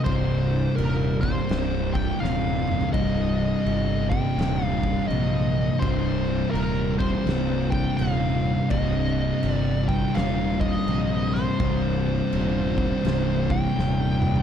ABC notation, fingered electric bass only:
X:1
M:4/4
L:1/8
Q:"Swing" 1/4=83
K:Cm
V:1 name="Fingered electric bass" clef=bass
C,,,2 E,,,2 C,,,2 E,,,2 | C,,,2 G,,,2 E,,,2 B,,,2 | C,,,2 E,,,2 C,,,2 E,,,2 | C,,,2 G,,,2 E,,,2 B,,,2 |
C,,,2 E,,,2 C,,,2 E,,,2 |]